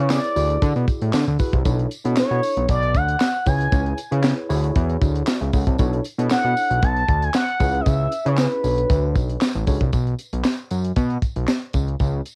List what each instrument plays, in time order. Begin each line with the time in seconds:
Already playing: tine electric piano E4 G#4
0.00 analog synth bass C#3, tine electric piano B4 C#5, analog synth lead C#5
0.10 analog synth lead D5, snare, clap, tambourine
0.24 closed hi-hat
0.36 analog synth bass D2, tine electric piano E4 F#4 G#4 D5, open hi-hat, tambourine
0.50 closed hi-hat
0.62 analog synth bass D3, kick, closed hi-hat, tambourine
0.76 analog synth bass B2, closed hi-hat
0.88 kick, closed hi-hat, tambourine
1.01 analog synth bass A2, closed hi-hat
1.13 analog synth bass D3, snare, clap, tambourine
1.27 analog synth bass D2, closed hi-hat
1.39 tine electric piano E4 F#4 G#4 B4, kick, open hi-hat, tambourine
1.53 analog synth bass C2, kick, closed hi-hat
1.65 analog synth bass B1, tine electric piano D4 E4 A4 C#5, kick, closed hi-hat, tambourine
1.79 closed hi-hat
1.91 closed hi-hat, tambourine
2.04 analog synth bass B2, tine electric piano D4 E4 A4 C#5, closed hi-hat
2.17 analog synth lead C#5, snare, clap, tambourine
2.31 analog synth bass B2, closed hi-hat
2.43 open hi-hat, tambourine
2.57 analog synth bass B1, closed hi-hat
2.69 analog synth bass B1, analog synth lead D5, kick, closed hi-hat, tambourine
2.82 closed hi-hat
2.95 analog synth bass D2, analog synth lead F#5, kick, closed hi-hat, tambourine
3.09 closed hi-hat
3.20 snare, clap, tambourine
3.46 analog synth bass C#2, tine electric piano E4 G#4 B4 C#5, analog synth lead G#5, kick, open hi-hat, tambourine
3.61 closed hi-hat
3.72 analog synth bass C#2, kick, closed hi-hat, tambourine
3.86 closed hi-hat
3.98 closed hi-hat, tambourine
4.12 analog synth bass C#3, tine electric piano E4 G#4 B4 C#5, closed hi-hat
4.23 snare, clap, tambourine
4.49 analog synth bass D2, tine electric piano E4 F#4 G#4 C#5, open hi-hat, tambourine
4.64 closed hi-hat
4.76 analog synth bass E2, kick, closed hi-hat
4.89 closed hi-hat
5.02 analog synth bass D2, kick, closed hi-hat, tambourine
5.16 closed hi-hat
5.27 tine electric piano F#4 D5, snare, clap, tambourine
5.41 analog synth bass C#2, tine electric piano G#4 E5, closed hi-hat
5.53 analog synth bass C#2, tine electric piano A4 F#5, kick, open hi-hat, tambourine
5.67 analog synth bass C2, tine electric piano C#5 A5, kick, closed hi-hat
5.79 analog synth bass B1, tine electric piano D4 E4 A4 C#5, kick, closed hi-hat, tambourine
5.93 closed hi-hat
6.05 closed hi-hat, tambourine
6.18 analog synth bass B2, tine electric piano D4 E4 A4 C#5, closed hi-hat
6.30 analog synth lead F#5, snare, clap, tambourine
6.45 analog synth bass B2
6.57 open hi-hat, tambourine
6.70 analog synth bass B1, closed hi-hat
6.82 analog synth bass B1, analog synth lead A5, kick, closed hi-hat
6.96 closed hi-hat
7.08 analog synth bass D2, kick, closed hi-hat
7.22 analog synth lead G#5, closed hi-hat
7.34 analog synth lead F#5, snare, clap, tambourine
7.48 closed hi-hat
7.60 analog synth bass C#2, tine electric piano C#4 E4 G#4 B4, kick, open hi-hat, tambourine
7.75 closed hi-hat
7.81 analog synth lead D#5
7.86 analog synth bass C#2, analog synth lead E5, kick, closed hi-hat, tambourine
8.12 closed hi-hat, tambourine
8.25 analog synth bass C#3, tine electric piano C#4 E4 G#4 B4, analog synth lead C#5, closed hi-hat
8.37 analog synth lead B4, snare, clap, tambourine
8.52 closed hi-hat
8.63 analog synth bass B1, tine electric piano D4 F#4 A4 C#5, open hi-hat, tambourine
8.78 closed hi-hat
8.90 analog synth bass D2, kick, closed hi-hat, tambourine
9.16 analog synth bass B1, kick, closed hi-hat, tambourine
9.29 closed hi-hat
9.41 snare, clap, tambourine
9.55 analog synth bass A1, closed hi-hat
9.67 analog synth bass C#2, tine electric piano D4 F#4 A4 C#5, kick, open hi-hat, tambourine
9.81 analog synth bass C2, kick, closed hi-hat
9.93 analog synth bass B1, kick, closed hi-hat, tambourine
10.07 closed hi-hat
10.18 closed hi-hat, tambourine
10.33 analog synth bass B1, closed hi-hat
10.44 snare, clap, tambourine
10.71 analog synth bass F#2, closed hi-hat, tambourine
10.85 closed hi-hat
10.96 analog synth bass B2, kick, closed hi-hat, tambourine
11.10 closed hi-hat
11.22 kick, closed hi-hat, tambourine
11.36 analog synth bass B1, closed hi-hat
11.48 snare, clap, tambourine
11.62 closed hi-hat
11.73 analog synth bass C#2, kick, closed hi-hat, tambourine
11.88 closed hi-hat
11.99 analog synth bass C#2, kick, closed hi-hat, tambourine
12.25 closed hi-hat, tambourine